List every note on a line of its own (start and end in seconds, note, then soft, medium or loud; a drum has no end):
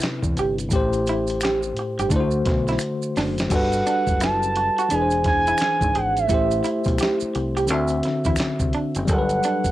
0.00 0.66 C3 medium
0.00 0.67 C4 medium
0.00 0.68 E4 medium
0.00 0.73 B4 medium
0.00 finger snap medium
0.00 snare loud
0.00 clap medium
0.00 closed hi-hat medium
0.00 maracas medium
0.23 0.35 E2 medium
0.23 kick medium
0.23 maracas medium
0.36 0.72 G1 medium
0.36 0.55 G4 medium
0.36 closed hi-hat medium
0.36 maracas soft
0.58 closed hi-hat soft
0.58 maracas medium
0.69 1.72 A1 loud
0.69 2.07 A2 medium
0.69 2.08 A3 medium
0.69 kick loud
0.69 closed hi-hat medium
0.69 maracas medium
0.73 2.09 G4 medium
0.73 2.10 C5 medium
0.93 closed hi-hat soft
0.93 maracas soft
1.06 1.25 E4 medium
1.06 closed hi-hat medium
1.06 maracas soft
1.27 closed hi-hat soft
1.27 maracas soft
1.41 1.59 G4 medium
1.41 finger snap medium
1.41 snare loud
1.41 closed hi-hat medium
1.41 maracas medium
1.45 clap medium
1.63 maracas medium
1.76 muted fingered electric bass stroke soft
1.76 muted clean electric guitar stroke soft
1.76 closed hi-hat medium
1.99 2.10 G1 medium
1.99 2.09 G4 medium
1.99 closed hi-hat medium
1.99 maracas soft
2.09 2.41 D2 medium
2.09 3.47 D3 medium
2.09 3.48 A3 medium
2.09 2.28 D4 medium
2.09 kick medium
2.09 closed hi-hat medium
2.09 maracas medium
2.13 2.20 E4 medium
2.13 3.50 C5 medium
2.20 3.50 F#4 medium
2.31 maracas soft
2.45 2.76 B1 medium
2.45 muted clean electric guitar stroke soft
2.45 kick loud
2.45 snare soft
2.45 closed hi-hat medium
2.68 2.78 E4 medium
2.68 snare soft
2.68 closed hi-hat soft
2.68 maracas soft
2.79 finger snap medium
2.79 closed hi-hat medium
2.79 maracas medium
3.02 maracas medium
3.16 3.47 F#1 medium
3.16 3.33 D4 medium
3.16 snare medium
3.16 open hi-hat soft
3.16 maracas soft
3.38 snare medium
3.38 closed hi-hat soft
3.38 maracas soft
3.49 3.81 G1 loud
3.49 4.87 G3 medium
3.49 4.87 F#4 medium
3.49 4.88 A4 medium
3.49 kick loud
3.49 closed hi-hat medium
3.49 crash medium
3.49 maracas medium
3.54 4.90 B4 medium
3.54 4.24 F#5 medium
3.72 closed hi-hat soft
3.72 maracas soft
3.86 4.03 D4 medium
3.86 closed hi-hat medium
3.86 maracas soft
4.07 4.68 F#1 medium
4.07 kick medium
4.07 closed hi-hat soft
4.07 maracas soft
4.20 4.38 E4 medium
4.20 4.94 A5 loud
4.20 finger snap soft
4.20 snare loud
4.20 clap medium
4.20 closed hi-hat medium
4.20 maracas medium
4.43 maracas soft
4.56 muted clean electric guitar stroke soft
4.56 closed hi-hat medium
4.78 4.88 F#4 medium
4.78 closed hi-hat medium
4.78 maracas soft
4.89 5.52 E1 medium
4.89 6.26 E3 medium
4.89 6.27 D4 medium
4.89 5.07 D4 medium
4.89 5.26 G#5 loud
4.89 closed hi-hat medium
4.89 maracas medium
4.93 6.28 G#4 medium
4.93 5.00 B4 soft
5.02 6.33 C5 medium
5.11 closed hi-hat soft
5.11 maracas soft
5.24 5.98 G#5 loud
5.24 muted clean electric guitar stroke soft
5.24 kick medium
5.24 snare soft
5.24 closed hi-hat medium
5.47 5.57 E4 medium
5.47 closed hi-hat soft
5.47 maracas soft
5.58 finger snap medium
5.58 snare loud
5.58 closed hi-hat medium
5.58 maracas medium
5.62 clap medium
5.81 5.93 G#1 medium
5.81 kick medium
5.81 closed hi-hat soft
5.81 maracas soft
5.95 6.26 G#1 medium
5.95 6.12 G#4 medium
5.95 6.20 F#5 loud
5.95 closed hi-hat medium
6.17 6.87 E5 medium
6.17 closed hi-hat soft
6.17 maracas soft
6.27 6.60 A1 loud
6.27 7.65 A3 medium
6.27 7.66 E4 medium
6.27 kick loud
6.27 closed hi-hat medium
6.27 maracas medium
6.32 7.67 G4 medium
6.32 7.68 C5 medium
6.51 closed hi-hat soft
6.51 maracas soft
6.64 6.81 E4 medium
6.64 closed hi-hat medium
6.64 maracas soft
6.84 6.98 B1 loud
6.84 kick medium
6.84 closed hi-hat medium
6.84 maracas soft
6.98 7.17 G4 medium
6.98 finger snap medium
6.98 closed hi-hat medium
6.98 maracas medium
7.03 snare loud
7.03 clap medium
7.20 muted fingered electric bass stroke soft
7.20 maracas soft
7.35 7.70 C2 medium
7.35 muted clean electric guitar stroke soft
7.35 closed hi-hat medium
7.57 7.66 G4 medium
7.57 closed hi-hat soft
7.57 maracas soft
7.67 8.00 D2 medium
7.67 9.05 D3 medium
7.67 9.06 C4 medium
7.67 closed hi-hat medium
7.67 maracas medium
7.71 7.87 D4 medium
7.71 9.07 F#4 medium
7.71 9.08 E5 medium
7.88 closed hi-hat soft
7.88 maracas soft
8.03 muted clean electric guitar stroke soft
8.03 snare soft
8.03 closed hi-hat medium
8.24 8.37 E2 medium
8.24 8.36 E4 medium
8.24 kick medium
8.24 closed hi-hat soft
8.24 maracas soft
8.36 finger snap medium
8.36 snare loud
8.36 closed hi-hat medium
8.36 maracas medium
8.40 muted fingered electric bass stroke soft
8.40 clap medium
8.60 8.72 C2 medium
8.60 kick medium
8.60 closed hi-hat soft
8.60 maracas soft
8.73 8.91 D4 medium
8.73 closed hi-hat soft
8.95 9.09 F#1 medium
8.95 closed hi-hat soft
8.95 maracas soft
9.05 9.39 G1 loud
9.05 9.71 F#3 medium
9.05 9.71 G3 medium
9.05 kick loud
9.05 closed hi-hat medium
9.05 maracas medium
9.09 9.71 A4 medium
9.09 9.18 A#4 medium
9.09 9.71 F#5 medium
9.18 9.71 B4 medium
9.29 closed hi-hat soft
9.29 maracas soft
9.43 9.61 D4 medium
9.43 closed hi-hat medium
9.43 maracas medium
9.64 9.71 F#1 medium
9.64 kick medium
9.64 closed hi-hat medium
9.64 maracas soft